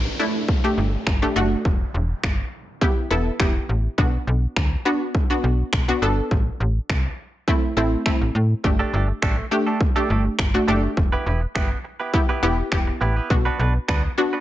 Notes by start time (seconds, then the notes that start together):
Already playing: downlifter
0.19 A3 D4 E4
0.48 kick
0.64 A3 D4 G4
0.78 G1
1.07 G1, finger snap, kick
1.22 A3 D4 G4
1.36 F#1 A3 D4 F#4
1.65 E1, kick
1.94 E1
2.24 G1, finger snap, kick
2.81 B3 E4 G4, kick
3.11 E1 B3 E4 A4
3.40 E1 B3 E4 G4, finger snap, kick
3.69 A1
3.98 B1 B3 D4 F#4, kick
4.27 B1
4.56 D2, finger snap, kick
4.85 B3 D4 F#4
5.15 kick
5.30 B3 D4 F#4
5.44 B1
5.73 B1, finger snap, kick
5.88 B3 D4 F#4
6.02 G1 B3 D4 A4
6.31 A1, kick
6.60 A1
6.90 C2, finger snap, kick
7.48 A3 C4 E4, kick
7.77 A1 A3 C4 E4
8.06 A1 A3 C4 E4, finger snap, kick
8.21 A1
8.35 A2
8.64 G1 A3 D4 G4, muted clean electric guitar stroke, kick
8.79 A3 D4 G4 A4
8.93 G1 A3 D4 G4 A4
9.09 muted clean electric guitar stroke
9.22 A1 A3 D4 G4 A4, finger snap, kick
9.38 muted clean electric guitar stroke
9.51 A3 D4 G4, muted clean electric guitar stroke
9.67 A3 D4 G4 A4
9.81 kick
9.96 A3 D4 G4 A4
10.09 G1 A3 D4 G4 A4
10.25 muted clean electric guitar stroke
10.39 G1, finger snap, kick
10.54 A3 D4 F#4, muted clean electric guitar stroke
10.68 F#1 A3 D4 G4 A4
10.83 muted clean electric guitar stroke
10.97 E1, muted clean electric guitar stroke, kick
11.12 B3 E4 G4 B4
11.26 E1 B3 E4 G4 B4
11.41 muted clean electric guitar stroke
11.55 G1 B3 E4 G4 B4, finger snap, kick
11.71 muted clean electric guitar stroke
11.84 muted clean electric guitar stroke
12.00 B3 E4 G4 B4
12.14 B3 E4 G4, kick
12.29 B3 E4 G4 B4
12.43 E1 B3 E4 G4 B4
12.58 muted clean electric guitar stroke
12.72 E1 B3 E4 G4, finger snap, muted clean electric guitar stroke, kick
12.87 muted clean electric guitar stroke
13.01 A1 B3 E4 G4 B4
13.16 B3 E4 G4 B4
13.30 B1 B3 D4 F#4, muted clean electric guitar stroke, kick
13.45 B3 D4 F#4 B4
13.59 B1 B3 D4 F#4 B4
13.75 muted clean electric guitar stroke
13.88 D2 B3 D4 F#4 B4, finger snap, kick
14.04 muted clean electric guitar stroke
14.18 B3 D4 F#4, muted clean electric guitar stroke
14.33 B3 D4 F#4 B4